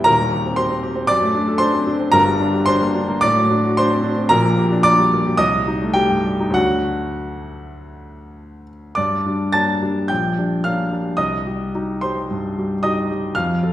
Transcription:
0.04 1.06 D#1 medium
0.04 1.06 D#2 medium
0.04 0.54 A#4 medium
0.04 0.57 A#5 loud
0.20 0.40 G3 medium
0.32 0.53 G4 medium
0.46 0.66 C4 medium
0.56 0.78 G4 medium
0.56 1.05 C5 medium
0.56 1.08 C6 loud
0.70 0.91 C4 medium
0.83 1.04 G4 medium
0.96 1.09 C4 medium
1.07 2.11 F#2 medium
1.07 1.57 D5 medium
1.07 1.60 D6 loud
1.22 1.43 A3 medium
1.35 1.56 D4 medium
1.48 1.69 A4 medium
1.58 1.82 D4 medium
1.58 2.09 C5 medium
1.58 2.13 C6 loud
1.73 1.95 C4 medium
1.87 2.09 D4 medium
2.00 2.14 C4 medium
2.12 3.19 G1 medium
2.12 3.19 G2 medium
2.12 2.63 A#4 medium
2.12 2.66 A#5 loud
2.27 2.48 G3 medium
2.40 2.62 D4 medium
2.54 2.75 G4 medium
2.66 2.90 D4 medium
2.66 3.18 C5 medium
2.66 3.21 C6 loud
2.82 3.03 A#3 medium
2.95 3.17 D4 medium
3.08 3.22 A#3 medium
3.21 4.26 A2 medium
3.21 3.72 D5 loud
3.21 3.76 D6 loud
3.37 3.58 F#3 medium
3.51 3.72 D4 medium
3.66 3.86 F#4 medium
3.77 3.99 D4 medium
3.77 4.27 C5 medium
3.77 4.30 C6 loud
3.92 4.12 C4 medium
4.04 4.24 D4 medium
4.18 4.30 C4 medium
4.29 5.36 A#1 medium
4.29 5.37 A#2 medium
4.29 4.80 A#4 medium
4.29 4.83 A#5 loud
4.45 4.66 A#3 medium
4.59 4.79 G4 medium
4.72 4.93 D4 medium
4.83 5.06 A#3 medium
4.83 5.36 D5 loud
4.83 5.39 D6 loud
4.99 5.20 G3 medium
5.13 5.35 A#3 medium
5.27 5.40 G4 medium
5.37 6.51 C2 medium
5.37 5.91 D#5 medium
5.37 5.94 D#6 loud
5.54 5.76 G3 medium
5.68 5.90 D#4 medium
5.82 6.04 A3 medium
5.94 6.18 G3 medium
5.94 6.51 G4 medium
5.94 6.54 G5 loud
6.10 6.33 G2 soft
6.26 6.49 G3 medium
6.40 6.55 D#4 medium
6.50 8.91 D2 medium
6.50 8.91 F#3 soft
6.50 8.92 A3 soft
6.50 8.93 D4 medium
6.50 8.67 F#5 loud
6.55 8.64 F#4 medium
8.95 10.07 G2 medium
8.95 9.50 D5 medium
8.95 9.53 D6 medium
9.26 9.51 G3 soft
9.26 9.51 D4 soft
9.53 9.79 A#3 soft
9.53 9.79 D4 medium
9.53 10.06 A5 medium
9.53 10.09 A6 loud
9.83 10.07 G3 soft
9.83 10.07 D4 soft
10.08 11.15 A#1 medium
10.08 10.61 G5 medium
10.08 10.64 G6 medium
10.39 10.63 G3 soft
10.39 10.62 D4 soft
10.64 10.89 A#3 soft
10.64 10.89 D4 soft
10.64 11.14 F5 medium
10.64 11.17 F6 medium
10.92 11.15 G3 soft
10.92 11.16 D4 soft
11.17 12.26 C2 medium
11.17 11.98 D#5 medium
11.17 12.01 D#6 medium
11.46 11.71 G3 soft
11.46 11.71 G4 soft
11.75 12.00 D#4 soft
11.75 12.00 G4 soft
12.01 12.27 G3 soft
12.01 12.28 G4 soft
12.01 12.79 C5 medium
12.01 12.83 C6 medium
12.31 12.73 G2 soft
12.58 12.81 G3 soft
12.58 12.82 G4 soft
12.83 13.07 D#4 soft
12.83 13.07 G4 soft
12.83 13.31 D#5 medium
12.83 13.35 D#6 medium
13.11 13.33 G3 soft
13.11 13.33 G4 medium
13.35 13.73 F2 medium
13.35 13.73 F5 medium
13.35 13.73 F6 medium
13.63 13.73 F3 soft
13.63 13.73 A4 soft

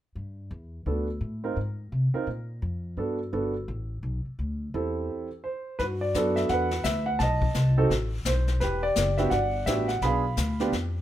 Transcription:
0.15 0.50 G2 medium
0.51 0.85 E2 medium
0.86 1.20 D2 medium
0.86 1.06 B3 soft
0.86 1.06 D4 soft
0.86 1.07 F#4 soft
0.86 1.07 A4 soft
1.21 1.55 A2 medium
1.44 1.56 C4 medium
1.44 1.56 D#4 soft
1.44 1.56 F4 soft
1.44 1.56 A#4 medium
1.56 1.91 G#2 medium
1.92 2.13 C3 medium
2.14 2.26 C4 medium
2.14 2.26 D#4 medium
2.14 2.26 F4 medium
2.14 2.26 A#4 medium
2.14 muted upright bass stroke soft
2.27 2.61 A#2 medium
2.62 2.96 F2 medium
2.97 3.32 G2 medium
2.97 3.17 B3 soft
2.97 3.18 D4 soft
2.97 3.18 F#4 soft
2.97 3.18 A4 medium
3.33 3.67 G1 medium
3.33 3.53 B3 soft
3.33 3.53 D4 soft
3.33 3.53 F#4 soft
3.33 3.53 A4 soft
3.68 4.02 A1 medium
4.03 4.24 B1 medium
4.26 muted upright bass stroke soft
4.39 4.73 D2 medium
4.74 5.08 E2 medium
4.74 5.27 C4 soft
4.74 5.27 E4 soft
4.74 5.27 G4 soft
4.74 5.27 A4 soft
5.44 5.80 C5 medium
5.79 6.14 G2 medium
5.79 6.15 F#4 soft
5.79 5.84 B4 medium
5.79 brush sweep soft
5.79 kick soft
5.79 snare soft
6.01 6.38 D5 medium
6.14 6.49 F#2 medium
6.14 6.68 B3 medium
6.14 6.68 D4 soft
6.14 6.69 F#4 medium
6.14 6.69 A4 medium
6.14 kick soft
6.14 snare soft
6.14 hi-hat pedal soft
6.36 6.50 E5 medium
6.36 snare soft
6.49 6.84 E2 medium
6.49 6.86 F#5 medium
6.49 brush sweep soft
6.49 kick soft
6.49 snare soft
6.53 7.18 B4 medium
6.71 snare soft
6.84 7.19 D2 medium
6.84 7.07 E5 medium
6.84 kick soft
6.84 snare medium
6.84 hi-hat pedal medium
7.06 7.19 F#5 medium
7.19 7.54 B1 medium
7.19 7.88 D#5 medium
7.19 7.86 A5 medium
7.19 brush sweep soft
7.19 kick soft
7.19 snare soft
7.42 kick soft
7.54 7.89 C2 medium
7.54 kick soft
7.54 snare soft
7.54 hi-hat pedal soft
7.77 7.89 C4 medium
7.77 7.90 D#4 medium
7.77 7.90 F#4 medium
7.77 7.90 A4 medium
7.90 8.24 A1 medium
7.90 brush sweep medium
7.90 kick soft
7.90 snare soft
8.25 8.60 B1 medium
8.25 8.62 C5 medium
8.25 kick soft
8.25 snare medium
8.25 hi-hat pedal medium
8.48 snare soft
8.60 8.95 E1 medium
8.60 9.18 G4 medium
8.60 8.84 B4 medium
8.60 brush sweep soft
8.60 kick soft
8.60 snare soft
8.83 9.16 D5 medium
8.96 9.30 F#1 medium
8.96 kick soft
8.96 snare medium
8.96 hi-hat pedal medium
9.18 9.30 B3 medium
9.18 9.31 D4 medium
9.18 9.31 F#4 medium
9.18 9.31 G4 medium
9.18 9.32 E5 medium
9.18 snare soft
9.30 9.66 G1 medium
9.30 9.99 D5 medium
9.30 9.67 F#5 medium
9.30 brush sweep soft
9.30 kick soft
9.30 snare soft
9.66 10.01 A1 medium
9.66 9.87 B3 medium
9.66 9.87 D4 soft
9.66 9.87 F#4 medium
9.66 9.87 G4 medium
9.66 9.89 E5 medium
9.66 kick soft
9.66 snare medium
9.66 hi-hat pedal medium
9.88 10.02 F#5 medium
9.88 snare soft
10.02 10.36 B1 medium
10.02 10.23 B3 medium
10.02 10.23 D4 medium
10.02 10.23 F4 soft
10.02 10.23 G#4 medium
10.02 10.69 B5 medium
10.02 brush sweep soft
10.02 kick soft
10.02 snare soft
10.06 10.70 F5 medium
10.37 10.71 D2 medium
10.37 kick soft
10.37 snare soft
10.37 hi-hat pedal soft
10.60 10.72 B3 medium
10.60 10.72 D4 medium
10.60 10.72 F4 medium
10.60 10.72 G4 medium
10.60 snare soft
10.72 11.02 F2 medium
10.72 brush sweep soft
10.72 kick soft
10.72 snare soft

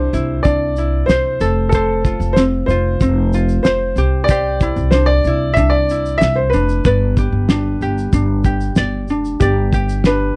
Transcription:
0.00 0.43 D4 medium
0.00 0.12 E4 medium
0.00 1.41 G4 medium
0.00 0.47 C5 medium
0.00 1.09 C5 medium
0.13 0.43 C2 medium
0.13 0.77 E4 medium
0.13 shaker soft
0.43 1.05 C2 medium
0.43 1.47 D4 medium
0.43 1.04 D5 medium
0.43 kick medium
0.43 shaker medium
0.76 1.48 E4 soft
0.76 shaker soft
1.06 1.38 C2 medium
1.06 1.74 C5 medium
1.06 snare medium
1.06 shaker medium
1.40 2.17 F1 medium
1.40 1.73 A4 medium
1.40 snare soft
1.40 shaker soft
1.69 2.37 A4 medium
1.69 kick loud
1.69 shaker medium
1.74 2.06 A4 medium
1.74 3.65 C5 medium
2.05 2.69 F4 medium
2.05 kick medium
2.05 shaker soft
2.20 2.65 F1 medium
2.20 shaker soft
2.33 2.41 C5 medium
2.33 snare loud
2.37 3.01 C4 medium
2.37 shaker medium
2.66 2.98 F1 medium
2.66 3.60 C5 medium
2.66 shaker soft
2.70 3.33 F4 soft
3.00 3.61 F1 medium
3.00 4.62 C4 medium
3.00 kick medium
3.00 shaker medium
3.33 3.98 F4 soft
3.33 shaker soft
3.49 shaker soft
3.63 3.94 F1 medium
3.63 4.30 C5 medium
3.63 snare medium
3.63 shaker medium
3.96 4.72 C2 medium
3.96 4.30 G4 medium
3.96 shaker soft
4.24 4.92 D5 medium
4.28 7.19 G4 medium
4.28 6.21 C5 medium
4.28 kick loud
4.28 shaker medium
4.60 4.94 E4 medium
4.60 kick medium
4.60 shaker soft
4.76 5.21 C2 medium
4.76 shaker soft
4.91 5.57 D4 medium
4.91 5.07 C5 medium
4.91 snare loud
4.91 shaker medium
5.06 5.57 D5 medium
5.24 5.54 C2 medium
5.24 5.90 E4 medium
5.24 shaker soft
5.54 6.17 C2 medium
5.54 5.70 E5 medium
5.54 kick medium
5.54 shaker medium
5.58 6.53 D4 medium
5.70 6.21 D5 medium
5.90 6.86 E4 soft
5.90 shaker soft
6.06 shaker soft
6.18 6.50 C2 medium
6.18 6.36 E5 medium
6.18 snare medium
6.18 shaker medium
6.36 6.51 C5 medium
6.50 7.49 D4 medium
6.50 8.71 B4 medium
6.50 shaker medium
6.54 6.83 F1 medium
6.69 shaker soft
6.85 7.29 G1 medium
6.85 7.18 B4 medium
6.85 8.77 D5 medium
6.85 kick loud
6.85 shaker medium
7.17 7.82 G4 medium
7.17 kick medium
7.17 shaker soft
7.32 7.77 G1 medium
7.49 8.13 D4 soft
7.49 snare loud
7.49 shaker medium
7.81 8.10 G1 medium
7.81 8.45 G4 medium
7.81 shaker soft
7.98 shaker soft
8.13 8.73 G1 medium
8.13 9.10 D4 medium
8.13 kick medium
8.13 shaker medium
8.44 9.73 G4 soft
8.44 kick medium
8.44 shaker soft
8.61 shaker soft
8.76 9.08 G1 medium
8.76 9.42 D5 medium
8.76 snare medium
8.76 shaker medium
9.08 9.38 F1 medium
9.08 10.06 D4 soft
9.08 shaker soft
9.25 shaker soft
9.40 10.32 G1 medium
9.40 10.06 G4 medium
9.40 10.36 D5 medium
9.40 kick loud
9.40 shaker medium
9.73 10.36 G4 medium
9.73 kick medium
9.73 shaker soft
9.89 shaker soft
10.04 10.36 D4 medium
10.04 10.36 B4 medium
10.04 snare loud
10.04 shaker medium

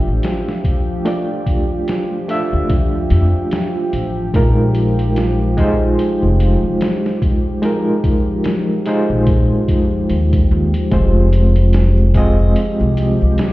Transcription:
0.00 10.89 F3 medium
0.00 1.01 A3 loud
0.00 1.02 D4 medium
0.00 1.02 F4 medium
0.00 10.89 G4 medium
0.00 1.03 E5 loud
0.07 0.22 A1 medium
0.23 snare loud
0.23 closed hi-hat medium
0.49 snare soft
0.64 kick medium
0.64 closed hi-hat medium
1.05 2.24 A3 medium
1.05 2.25 D4 medium
1.05 2.25 F4 medium
1.05 2.26 D5 medium
1.05 closed hi-hat medium
1.46 kick medium
1.46 closed hi-hat medium
1.88 snare loud
1.88 closed hi-hat medium
2.28 4.30 A3 medium
2.28 4.30 D4 medium
2.28 4.31 F4 medium
2.28 4.31 E5 loud
2.28 closed hi-hat medium
2.53 3.08 D2 loud
2.70 kick loud
2.70 closed hi-hat medium
3.10 3.32 F2 loud
3.10 closed hi-hat medium
3.51 snare loud
3.51 closed hi-hat medium
3.93 4.30 A1 medium
3.93 closed hi-hat medium
4.34 5.95 A#1 loud
4.34 5.53 G#3 medium
4.34 5.54 D#4 medium
4.34 5.54 F4 medium
4.34 5.54 A#4 medium
4.34 kick loud
4.34 closed hi-hat medium
4.75 closed hi-hat medium
4.99 closed hi-hat soft
5.16 snare loud
5.16 closed hi-hat medium
5.57 7.59 G#3 loud
5.57 7.59 D#4 medium
5.57 7.59 F4 medium
5.57 7.60 C5 loud
5.57 kick loud
5.57 closed hi-hat medium
5.99 closed hi-hat medium
6.23 6.58 F1 medium
6.40 closed hi-hat medium
6.64 6.79 F1 medium
6.81 snare loud
6.81 closed hi-hat medium
7.06 snare soft
7.22 kick loud
7.22 closed hi-hat medium
7.62 8.82 G#3 medium
7.62 8.82 D#4 medium
7.62 8.83 F4 medium
7.62 8.83 A#4 medium
7.62 closed hi-hat medium
8.04 kick medium
8.04 closed hi-hat medium
8.44 snare loud
8.44 closed hi-hat medium
8.86 10.88 G#3 medium
8.86 10.88 D#4 medium
8.86 10.88 F4 medium
8.86 10.89 C5 loud
8.86 closed hi-hat medium
9.10 9.68 A#1 medium
9.27 kick loud
9.27 closed hi-hat medium
9.68 10.12 F1 medium
9.68 kick loud
9.68 closed hi-hat medium
10.10 10.47 D#2 medium
10.10 closed hi-hat medium
10.33 kick loud
10.33 closed hi-hat medium
10.51 10.72 D#2 loud
10.74 closed hi-hat medium
10.90 12.53 F1 loud
10.90 13.53 F3 medium
10.90 12.11 G#3 medium
10.90 12.11 C4 medium
10.90 12.12 F4 medium
10.90 13.53 G4 medium
10.90 12.12 C5 medium
10.90 kick loud
10.90 closed hi-hat medium
10.90 maracas soft
11.33 closed hi-hat medium
11.33 maracas medium
11.56 closed hi-hat soft
11.56 maracas soft
11.73 snare loud
11.73 closed hi-hat medium
11.73 maracas medium
11.97 maracas soft
12.14 13.53 G#3 medium
12.14 13.53 C4 medium
12.14 13.53 F4 medium
12.14 13.53 D#5 loud
12.14 kick loud
12.14 closed hi-hat medium
12.14 triangle medium
12.14 maracas loud
12.39 maracas soft
12.56 closed hi-hat medium
12.56 maracas soft
12.79 13.15 C2 loud
12.79 maracas soft
12.97 closed hi-hat medium
12.97 maracas medium
13.21 13.37 C2 medium
13.21 maracas soft
13.38 snare loud
13.38 closed hi-hat medium
13.38 maracas medium

